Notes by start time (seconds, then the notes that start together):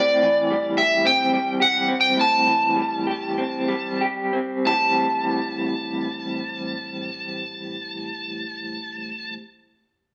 Already playing: A2 A3 C4 D5
0.23 E3
0.50 G3
0.78 G4 E5
1.05 C4 G5
1.33 G3
1.60 G4 F#5
1.88 C4
2.01 G5
2.17 A2
2.21 A5
2.47 E3
2.76 G3
3.07 G4
3.38 C4
3.68 G3
4.01 G4
4.33 C4
4.65 A2 E3 G3 C4 G4 A5